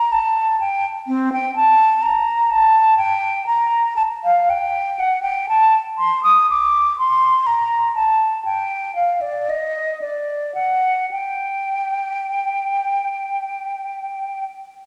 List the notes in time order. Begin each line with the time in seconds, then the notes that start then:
Already playing: A#5
0.12 A5
0.60 G5
1.07 C4
1.33 G5
1.56 A5
2.02 A#5
2.51 A5
2.98 G5
3.46 A#5
3.96 A5
4.24 F5
4.50 G5
4.99 F#5
5.22 G5
5.49 A5
5.98 C6
6.23 D#6
6.50 D6
6.99 C6
7.47 A#5
7.95 A5
8.45 G5
8.95 F5
9.21 D5
9.49 D#5
10.01 D5
10.55 F#5
11.11 G5